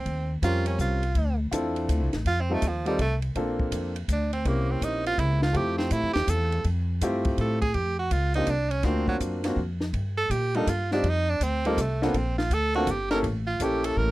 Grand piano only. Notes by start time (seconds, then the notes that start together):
0.43 G3 C4 C#4 F4 A#4
1.51 C4 D4 E4 F4 A4
2.50 G3 C4 D#4 F4 A4
2.86 G3 C4 D#4 F4 A4
3.36 A#3 C4 D4 F4 A4
4.46 A#3 C4 C#4 E4 G4
5.53 A3 C4 E4 F4 G4
7.02 A3 C4 E4 F4 G4
8.36 A#3 C4 D4 F4 G4
8.85 A#3 C4 D4 F4 F#4
9.45 A#3 C4 D4 F4 F#4
10.55 G3 A#3 D4 F4 A4
10.92 G3 C4 D#4 F4 G4
11.66 G3 C4 D#4 F4 A4
12.02 A#3 C4 D4 F4 A4
12.75 A#3 C4 D4 F4 A4
13.11 A#3 C#4 E4 G4 A4
13.61 A#3 C#4 E4 G4 A4